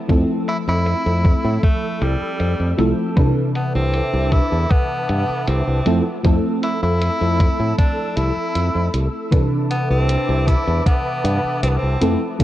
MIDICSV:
0, 0, Header, 1, 7, 480
1, 0, Start_track
1, 0, Key_signature, 0, "major"
1, 0, Tempo, 769231
1, 58, Time_signature, 4, 2, 24, 8
1, 7762, End_track
2, 0, Start_track
2, 0, Title_t, "String machine"
2, 0, Program_c, 0, 50
2, 0, Note_on_c, 0, 69, 79
2, 0, Note_on_c, 0, 88, 86
2, 1957, Note_off_c, 0, 69, 0
2, 1957, Note_off_c, 0, 88, 0
2, 1978, Note_on_c, 0, 76, 68
2, 1978, Note_on_c, 0, 81, 71
2, 1978, Note_on_c, 0, 86, 82
2, 1979, Note_on_c, 0, 71, 73
2, 3641, Note_off_c, 0, 76, 0
2, 3641, Note_off_c, 0, 81, 0
2, 3641, Note_off_c, 0, 86, 0
2, 3642, Note_off_c, 0, 71, 0
2, 3658, Note_on_c, 0, 69, 75
2, 3659, Note_on_c, 0, 88, 85
2, 5796, Note_off_c, 0, 69, 0
2, 5797, Note_off_c, 0, 88, 0
2, 5817, Note_on_c, 0, 71, 75
2, 5817, Note_on_c, 0, 81, 70
2, 5818, Note_on_c, 0, 76, 70
2, 5818, Note_on_c, 0, 86, 83
2, 7481, Note_off_c, 0, 71, 0
2, 7481, Note_off_c, 0, 76, 0
2, 7481, Note_off_c, 0, 81, 0
2, 7481, Note_off_c, 0, 86, 0
2, 7498, Note_on_c, 0, 69, 81
2, 7498, Note_on_c, 0, 88, 87
2, 7762, Note_off_c, 0, 69, 0
2, 7762, Note_off_c, 0, 88, 0
2, 7762, End_track
3, 0, Start_track
3, 0, Title_t, "FM electric piano"
3, 0, Program_c, 1, 5
3, 0, Control_c, 1, 64, 127
3, 50, Note_on_c, 1, 53, 84
3, 55, Note_on_c, 1, 57, 74
3, 60, Note_on_c, 1, 60, 77
3, 65, Note_on_c, 1, 64, 76
3, 68, Note_on_c, 1, 69, 90
3, 1706, Note_off_c, 1, 53, 0
3, 1708, Note_off_c, 1, 57, 0
3, 1711, Note_off_c, 1, 60, 0
3, 1713, Note_off_c, 1, 64, 0
3, 1715, Note_off_c, 1, 69, 0
3, 1733, Note_on_c, 1, 53, 88
3, 1735, Note_on_c, 1, 57, 80
3, 1737, Note_on_c, 1, 60, 77
3, 1739, Note_on_c, 1, 64, 80
3, 1743, Note_on_c, 1, 69, 100
3, 1838, Note_off_c, 1, 53, 0
3, 1839, Note_off_c, 1, 57, 0
3, 1841, Note_off_c, 1, 60, 0
3, 1842, Note_off_c, 1, 64, 0
3, 1843, Note_off_c, 1, 69, 0
3, 1970, Note_on_c, 1, 52, 86
3, 1975, Note_on_c, 1, 71, 78
3, 1980, Note_on_c, 1, 48, 79
3, 1984, Note_on_c, 1, 62, 77
3, 1986, Control_c, 1, 64, 0
3, 1990, Note_on_c, 1, 69, 92
3, 2088, Control_c, 1, 64, 127
3, 3626, Note_off_c, 1, 52, 0
3, 3628, Note_off_c, 1, 71, 0
3, 3631, Note_off_c, 1, 48, 0
3, 3633, Note_off_c, 1, 62, 0
3, 3636, Note_off_c, 1, 69, 0
3, 3654, Note_on_c, 1, 53, 86
3, 3656, Note_on_c, 1, 57, 81
3, 3659, Note_on_c, 1, 60, 79
3, 3661, Note_on_c, 1, 64, 77
3, 3664, Note_on_c, 1, 69, 99
3, 3667, Control_c, 1, 64, 0
3, 3759, Note_off_c, 1, 53, 0
3, 3760, Note_off_c, 1, 57, 0
3, 3762, Note_off_c, 1, 60, 0
3, 3763, Note_off_c, 1, 64, 0
3, 3764, Note_off_c, 1, 69, 0
3, 3791, Control_c, 1, 64, 127
3, 3888, Note_on_c, 1, 53, 84
3, 3893, Note_on_c, 1, 57, 75
3, 3898, Note_on_c, 1, 60, 81
3, 3903, Note_on_c, 1, 64, 78
3, 3907, Note_on_c, 1, 69, 98
3, 5545, Note_off_c, 1, 53, 0
3, 5547, Note_off_c, 1, 57, 0
3, 5550, Note_off_c, 1, 60, 0
3, 5552, Note_off_c, 1, 64, 0
3, 5554, Note_off_c, 1, 69, 0
3, 5808, Note_on_c, 1, 52, 82
3, 5813, Note_on_c, 1, 71, 77
3, 5818, Note_on_c, 1, 48, 78
3, 5823, Note_on_c, 1, 62, 80
3, 5827, Control_c, 1, 64, 0
3, 5827, Note_on_c, 1, 69, 94
3, 5926, Control_c, 1, 64, 127
3, 7465, Note_off_c, 1, 52, 0
3, 7467, Note_off_c, 1, 71, 0
3, 7470, Note_off_c, 1, 48, 0
3, 7473, Note_off_c, 1, 62, 0
3, 7474, Note_off_c, 1, 69, 0
3, 7494, Note_on_c, 1, 53, 91
3, 7496, Note_on_c, 1, 57, 82
3, 7498, Note_on_c, 1, 60, 79
3, 7501, Note_on_c, 1, 64, 78
3, 7503, Note_on_c, 1, 69, 96
3, 7506, Control_c, 1, 64, 0
3, 7599, Note_off_c, 1, 53, 0
3, 7600, Note_off_c, 1, 57, 0
3, 7601, Note_off_c, 1, 60, 0
3, 7602, Note_off_c, 1, 64, 0
3, 7603, Control_c, 1, 64, 127
3, 7604, Note_off_c, 1, 69, 0
3, 7730, Note_on_c, 1, 53, 89
3, 7735, Note_on_c, 1, 57, 79
3, 7739, Note_on_c, 1, 60, 77
3, 7762, Note_off_c, 1, 53, 0
3, 7762, Note_off_c, 1, 57, 0
3, 7762, Note_off_c, 1, 60, 0
3, 7762, End_track
4, 0, Start_track
4, 0, Title_t, "Tenor saxophone"
4, 0, Program_c, 2, 66
4, 303, Note_on_c, 2, 64, 98
4, 357, Note_off_c, 2, 64, 0
4, 427, Note_on_c, 2, 64, 106
4, 996, Note_off_c, 2, 64, 0
4, 1018, Note_on_c, 2, 57, 85
4, 1258, Note_on_c, 2, 55, 82
4, 1268, Note_off_c, 2, 57, 0
4, 1738, Note_off_c, 2, 55, 0
4, 2217, Note_on_c, 2, 59, 84
4, 2332, Note_off_c, 2, 59, 0
4, 2341, Note_on_c, 2, 60, 90
4, 2697, Note_on_c, 2, 64, 102
4, 2706, Note_off_c, 2, 60, 0
4, 2937, Note_on_c, 2, 59, 90
4, 2946, Note_off_c, 2, 64, 0
4, 3418, Note_on_c, 2, 60, 75
4, 3428, Note_off_c, 2, 59, 0
4, 3781, Note_off_c, 2, 60, 0
4, 4138, Note_on_c, 2, 64, 96
4, 4252, Note_off_c, 2, 64, 0
4, 4259, Note_on_c, 2, 64, 112
4, 4832, Note_off_c, 2, 64, 0
4, 4854, Note_on_c, 2, 62, 85
4, 5095, Note_on_c, 2, 64, 94
4, 5104, Note_off_c, 2, 62, 0
4, 5576, Note_off_c, 2, 64, 0
4, 6056, Note_on_c, 2, 59, 81
4, 6172, Note_off_c, 2, 59, 0
4, 6180, Note_on_c, 2, 60, 91
4, 6536, Note_on_c, 2, 64, 100
4, 6546, Note_off_c, 2, 60, 0
4, 6774, Note_off_c, 2, 64, 0
4, 6778, Note_on_c, 2, 59, 87
4, 7233, Note_off_c, 2, 59, 0
4, 7257, Note_on_c, 2, 60, 75
4, 7299, Note_on_c, 2, 59, 61
4, 7308, Note_off_c, 2, 60, 0
4, 7346, Note_on_c, 2, 60, 72
4, 7356, Note_off_c, 2, 59, 0
4, 7620, Note_off_c, 2, 60, 0
4, 7762, End_track
5, 0, Start_track
5, 0, Title_t, "Fingered electric bass"
5, 0, Program_c, 3, 33
5, 59, Note_on_c, 3, 41, 88
5, 141, Note_off_c, 3, 41, 0
5, 421, Note_on_c, 3, 41, 81
5, 580, Note_off_c, 3, 41, 0
5, 662, Note_on_c, 3, 41, 89
5, 820, Note_off_c, 3, 41, 0
5, 901, Note_on_c, 3, 45, 94
5, 979, Note_off_c, 3, 45, 0
5, 1257, Note_on_c, 3, 36, 96
5, 1340, Note_off_c, 3, 36, 0
5, 1497, Note_on_c, 3, 41, 93
5, 1580, Note_off_c, 3, 41, 0
5, 1621, Note_on_c, 3, 41, 76
5, 1699, Note_off_c, 3, 41, 0
5, 1738, Note_on_c, 3, 36, 81
5, 1821, Note_off_c, 3, 36, 0
5, 1978, Note_on_c, 3, 36, 91
5, 2061, Note_off_c, 3, 36, 0
5, 2341, Note_on_c, 3, 36, 87
5, 2500, Note_off_c, 3, 36, 0
5, 2581, Note_on_c, 3, 36, 92
5, 2740, Note_off_c, 3, 36, 0
5, 2821, Note_on_c, 3, 40, 94
5, 2899, Note_off_c, 3, 40, 0
5, 3178, Note_on_c, 3, 43, 93
5, 3260, Note_off_c, 3, 43, 0
5, 3418, Note_on_c, 3, 36, 95
5, 3501, Note_off_c, 3, 36, 0
5, 3541, Note_on_c, 3, 36, 79
5, 3619, Note_off_c, 3, 36, 0
5, 3658, Note_on_c, 3, 41, 82
5, 3741, Note_off_c, 3, 41, 0
5, 3897, Note_on_c, 3, 41, 93
5, 3980, Note_off_c, 3, 41, 0
5, 4260, Note_on_c, 3, 41, 83
5, 4419, Note_off_c, 3, 41, 0
5, 4500, Note_on_c, 3, 41, 89
5, 4659, Note_off_c, 3, 41, 0
5, 4740, Note_on_c, 3, 45, 91
5, 4819, Note_off_c, 3, 45, 0
5, 5098, Note_on_c, 3, 36, 94
5, 5180, Note_off_c, 3, 36, 0
5, 5336, Note_on_c, 3, 41, 89
5, 5420, Note_off_c, 3, 41, 0
5, 5461, Note_on_c, 3, 41, 76
5, 5539, Note_off_c, 3, 41, 0
5, 5577, Note_on_c, 3, 36, 80
5, 5660, Note_off_c, 3, 36, 0
5, 5817, Note_on_c, 3, 36, 89
5, 5900, Note_off_c, 3, 36, 0
5, 6180, Note_on_c, 3, 36, 80
5, 6339, Note_off_c, 3, 36, 0
5, 6420, Note_on_c, 3, 36, 89
5, 6579, Note_off_c, 3, 36, 0
5, 6661, Note_on_c, 3, 40, 95
5, 6739, Note_off_c, 3, 40, 0
5, 7016, Note_on_c, 3, 43, 91
5, 7099, Note_off_c, 3, 43, 0
5, 7256, Note_on_c, 3, 36, 95
5, 7339, Note_off_c, 3, 36, 0
5, 7380, Note_on_c, 3, 36, 78
5, 7459, Note_off_c, 3, 36, 0
5, 7497, Note_on_c, 3, 41, 81
5, 7580, Note_off_c, 3, 41, 0
5, 7737, Note_on_c, 3, 41, 87
5, 7762, Note_off_c, 3, 41, 0
5, 7762, End_track
6, 0, Start_track
6, 0, Title_t, "Muted fingered electric bass strokes"
6, 1381, Note_on_c, 9, 29, 40
6, 1444, Note_off_c, 9, 29, 0
6, 3301, Note_on_c, 9, 29, 39
6, 3364, Note_off_c, 9, 29, 0
6, 5220, Note_on_c, 9, 29, 40
6, 5283, Note_off_c, 9, 29, 0
6, 7140, Note_on_c, 9, 29, 40
6, 7203, Note_off_c, 9, 29, 0
6, 7762, End_track
7, 0, Start_track
7, 0, Title_t, "Drums"
7, 58, Note_on_c, 9, 42, 71
7, 59, Note_on_c, 9, 36, 116
7, 120, Note_off_c, 9, 42, 0
7, 121, Note_off_c, 9, 36, 0
7, 299, Note_on_c, 9, 42, 64
7, 361, Note_off_c, 9, 42, 0
7, 537, Note_on_c, 9, 42, 72
7, 600, Note_off_c, 9, 42, 0
7, 778, Note_on_c, 9, 36, 102
7, 778, Note_on_c, 9, 42, 63
7, 840, Note_off_c, 9, 42, 0
7, 841, Note_off_c, 9, 36, 0
7, 1017, Note_on_c, 9, 42, 72
7, 1018, Note_on_c, 9, 36, 109
7, 1080, Note_off_c, 9, 36, 0
7, 1080, Note_off_c, 9, 42, 0
7, 1258, Note_on_c, 9, 42, 58
7, 1320, Note_off_c, 9, 42, 0
7, 1497, Note_on_c, 9, 42, 74
7, 1559, Note_off_c, 9, 42, 0
7, 1738, Note_on_c, 9, 42, 63
7, 1801, Note_off_c, 9, 42, 0
7, 1977, Note_on_c, 9, 42, 69
7, 1978, Note_on_c, 9, 36, 119
7, 2039, Note_off_c, 9, 42, 0
7, 2040, Note_off_c, 9, 36, 0
7, 2217, Note_on_c, 9, 42, 59
7, 2280, Note_off_c, 9, 42, 0
7, 2457, Note_on_c, 9, 42, 68
7, 2519, Note_off_c, 9, 42, 0
7, 2696, Note_on_c, 9, 42, 62
7, 2698, Note_on_c, 9, 36, 58
7, 2758, Note_off_c, 9, 42, 0
7, 2760, Note_off_c, 9, 36, 0
7, 2937, Note_on_c, 9, 36, 118
7, 2937, Note_on_c, 9, 42, 70
7, 2999, Note_off_c, 9, 42, 0
7, 3000, Note_off_c, 9, 36, 0
7, 3176, Note_on_c, 9, 42, 58
7, 3239, Note_off_c, 9, 42, 0
7, 3416, Note_on_c, 9, 42, 75
7, 3479, Note_off_c, 9, 42, 0
7, 3656, Note_on_c, 9, 42, 64
7, 3718, Note_off_c, 9, 42, 0
7, 3896, Note_on_c, 9, 42, 69
7, 3898, Note_on_c, 9, 36, 115
7, 3959, Note_off_c, 9, 42, 0
7, 3960, Note_off_c, 9, 36, 0
7, 4137, Note_on_c, 9, 42, 61
7, 4200, Note_off_c, 9, 42, 0
7, 4378, Note_on_c, 9, 42, 69
7, 4440, Note_off_c, 9, 42, 0
7, 4618, Note_on_c, 9, 36, 105
7, 4618, Note_on_c, 9, 42, 59
7, 4680, Note_off_c, 9, 36, 0
7, 4680, Note_off_c, 9, 42, 0
7, 4858, Note_on_c, 9, 36, 114
7, 4858, Note_on_c, 9, 42, 69
7, 4920, Note_off_c, 9, 36, 0
7, 4920, Note_off_c, 9, 42, 0
7, 5097, Note_on_c, 9, 42, 58
7, 5159, Note_off_c, 9, 42, 0
7, 5337, Note_on_c, 9, 42, 69
7, 5399, Note_off_c, 9, 42, 0
7, 5578, Note_on_c, 9, 42, 60
7, 5641, Note_off_c, 9, 42, 0
7, 5817, Note_on_c, 9, 36, 110
7, 5818, Note_on_c, 9, 42, 69
7, 5880, Note_off_c, 9, 36, 0
7, 5880, Note_off_c, 9, 42, 0
7, 6058, Note_on_c, 9, 42, 56
7, 6120, Note_off_c, 9, 42, 0
7, 6298, Note_on_c, 9, 42, 65
7, 6360, Note_off_c, 9, 42, 0
7, 6537, Note_on_c, 9, 36, 58
7, 6539, Note_on_c, 9, 42, 57
7, 6600, Note_off_c, 9, 36, 0
7, 6602, Note_off_c, 9, 42, 0
7, 6778, Note_on_c, 9, 36, 108
7, 6779, Note_on_c, 9, 42, 64
7, 6840, Note_off_c, 9, 36, 0
7, 6841, Note_off_c, 9, 42, 0
7, 7019, Note_on_c, 9, 42, 54
7, 7081, Note_off_c, 9, 42, 0
7, 7258, Note_on_c, 9, 42, 68
7, 7320, Note_off_c, 9, 42, 0
7, 7497, Note_on_c, 9, 42, 59
7, 7560, Note_off_c, 9, 42, 0
7, 7737, Note_on_c, 9, 36, 110
7, 7738, Note_on_c, 9, 42, 67
7, 7762, Note_off_c, 9, 36, 0
7, 7762, Note_off_c, 9, 42, 0
7, 7762, End_track
0, 0, End_of_file